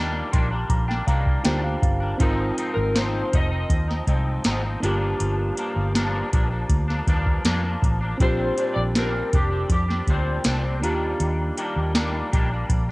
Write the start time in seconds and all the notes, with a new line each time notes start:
Already playing: D#2 D#3 G3 A#3 D4 F4 G4 A#4
0.32 A#1 D#3 G3 A#3 D4 C6, kick, closed hi-hat
0.51 G3 A#3 D4
0.70 A#1 A#5, kick, closed hi-hat
0.88 G3 A#3 D4 G5, snare
1.07 C2 D#3 G3 A#3 D4 F5, kick, closed hi-hat
1.26 kick
1.44 D2 D#3 G3 A#3 D4 F4 G4 C5 G5, snare, closed hi-hat
1.63 G3 A#3 D4 F5
1.82 G1 F5, kick, closed hi-hat
2.00 G3 A#3 D4
2.18 G#1 G#2 F3 C4 D#4 F4, kick, closed hi-hat
2.23 A#4
2.56 G#2 F3 C4 D#4, closed hi-hat
2.74 G#1 A#4
2.94 G#2 F3 C4 D#4, snare, closed hi-hat
2.98 C5
3.32 F1 G#2 F3 C4 D#4 D#5, kick, closed hi-hat
3.51 F3 C4 D#4
3.70 D#2, kick, closed hi-hat
3.88 F3 C4 D#4, snare
4.07 C2 G#2 F3 C4 D#4, kick, closed hi-hat
4.44 G#1 G#2 F3 C4 D#4, snare, closed hi-hat
4.63 F3 C4 D#4
4.80 G1 G2 F3 A#3 D4 F4, closed hi-hat
4.85 G4
5.20 G1, closed hi-hat
5.57 G2 F3 A#3 D4, closed hi-hat
5.76 G1
5.94 G2 F3 A#3 D4, snare, closed hi-hat
6.31 A#1 G2 F3 A#3 D4, kick, closed hi-hat
6.50 F3 A#3 D4
6.69 D2, kick, closed hi-hat
6.88 F3 A#3 D4, snare
7.07 D#2 G2 F3 A#3 D4, kick, closed hi-hat
7.26 kick
7.45 F2 G2 F3 A#3 D4, snare, closed hi-hat
7.64 F3 A#3 D4
7.82 A1, kick, closed hi-hat
8.01 F3 A#3 D4
8.18 A#1 A#2 G3 C4 D4 F4, kick, closed hi-hat
8.22 G4 C5
8.57 A#2 G3 C4 D4, closed hi-hat
8.74 A#1 D5
8.95 A#2 G3 C4 D4 A#4, snare, closed hi-hat
9.32 F1 A#2 G3 C4 D4 G4, kick, closed hi-hat
9.51 G3 C4 D4
9.70 F2 G4, kick, closed hi-hat
9.89 G3 C4 D4, snare
10.07 D2 A#2 G3 C4 D4 C5, kick, closed hi-hat
10.44 C2 A#2 G3 C4 D4, snare, closed hi-hat
10.64 G3 C4 D4
10.80 D#2 D#3 G3 A#3 D4 F4, closed hi-hat
10.84 D4 G4
11.20 D#2, closed hi-hat
11.57 D#3 G3 A#3 D4, closed hi-hat
11.76 D#2
11.95 D#3 G3 A#3 D4, snare, closed hi-hat
12.32 A#1 D#3 G3 A#3 D4, kick, closed hi-hat
12.52 G3 A#3 D4
12.70 A#1, kick, closed hi-hat